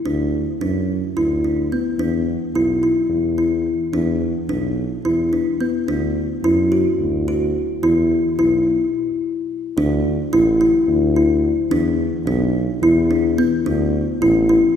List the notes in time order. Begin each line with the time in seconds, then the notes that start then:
0.05 D2 D4
0.61 F#2 D4
1.15 D2 E4
1.44 D4
1.72 B3
1.98 E2 D4
2.54 B1 E4
2.83 E4
3.09 E2
3.38 E4
3.93 E2 D4
4.49 B1 D4
5.04 E2 E4
5.33 D4
5.60 B3
5.88 D2 D4
6.43 F#2 E4
6.72 F#4
6.99 D2
7.28 F#4
7.82 E2 E4
8.38 B1 E4
9.77 D2 D4
10.32 A1 E4
10.61 E4
10.87 D2
11.16 E4
11.71 E2 D4
12.26 B1 D4
12.82 E2 E4
13.11 D4
13.38 B3
13.65 D2 D4
14.21 A1 E4
14.49 E4